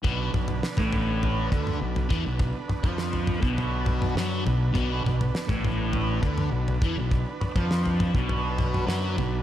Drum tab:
SD |----o-----------|----o-------o---|----o-----------|----o-------o---|
T2 |--o---o----o----|--o---o---oo----|--o---o----o----|--o---o---oo----|
FT |o-oo-oo-o-o--oo-|o-oo-oo-o-o---o-|o-oo-oo-o-o--oo-|o-oo-oo-o-o---o-|
BD |o----o----o---o-|o--o---o--------|o----o----o---o-|o--o---o--------|